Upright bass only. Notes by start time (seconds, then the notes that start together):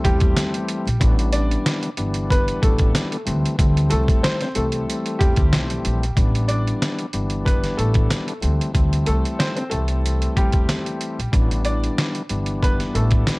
0.05 E2
0.87 A#1
1.01 A1
1.98 G1
2.63 A1
3.27 D2
3.59 D2
3.92 C2
4.56 C2
5.21 E2
5.38 D2
5.53 B1
5.85 A#1
6.17 A1
7.14 G1
7.79 A1
8.43 D2
8.75 D2
9.08 C2
9.72 C2
10.37 E2
11.19 A#1
11.33 A1
12.31 G1
12.95 A1